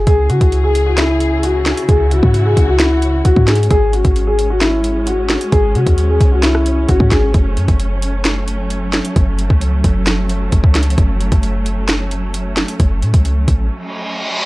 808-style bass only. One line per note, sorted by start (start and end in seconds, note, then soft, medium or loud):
0.07 0.31 C#2 loud
0.30 0.40 C#3 loud
0.41 1.73 C#2 loud
1.89 2.21 C#2 loud
2.23 2.56 G#2 loud
2.57 3.22 C#2 loud
3.25 3.36 C#2 loud
3.36 3.69 G#2 loud
3.71 4.03 G#1 loud
4.05 5.37 G#1 loud
5.52 5.77 G#1 loud
5.75 5.86 C3 loud
5.87 6.19 D#2 loud
6.21 6.86 C2 loud
6.89 6.99 G#1 loud
7.00 7.11 G#2 loud
7.11 7.33 G#1 loud
7.34 7.58 F#1 loud
7.57 7.68 F#2 loud
7.68 9.01 F#1 loud
9.16 9.49 F#1 loud
9.50 9.83 C#2 loud
9.84 10.50 F#1 loud
10.52 10.63 F#1 loud
10.64 10.96 C#2 loud
10.98 11.31 F#1 loud
11.32 12.64 F#1 loud
12.80 13.04 F#1 loud
13.02 13.13 A2 loud
13.14 13.46 C#2 loud
13.48 13.70 A1 loud